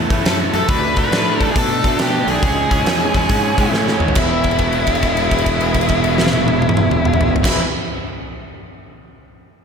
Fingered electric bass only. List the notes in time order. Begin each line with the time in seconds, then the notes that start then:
0.10 E2
0.26 F#2
0.54 F#2
0.69 D2
1.12 A2
1.56 B2
1.85 B2
2.00 B2
2.27 B1
2.43 C#2
2.71 C#2
2.86 E2
3.14 E2
3.29 G#2
3.58 G#2
3.71 A2
4.00 D#2
4.17 E1
7.44 E1